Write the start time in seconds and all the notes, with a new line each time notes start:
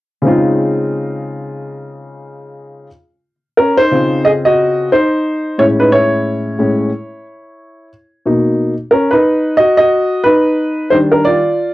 0.22 C#3 G#3 C4
0.27 D#4 F4
3.57 C#4 A#4
3.77 D#4 C5
3.91 C#3 C4 F4
4.25 G#4 D#5
4.45 F#4 D#5
4.92 D#4 C5
5.58 A2 G#3 C#4 E4 C#5
5.80 D#4 B4
5.92 E4 C#5
6.59 A2 G#3 C#4
8.26 B2 A#3 D#4
8.91 C#4 A#4
9.11 D#4 B4
9.57 F#4 D#5
9.77 F#4 D#5
10.24 D#4 B4
10.90 D#3 G3 D4 D#4 C5
11.12 D4 A#4
11.25 F4 D5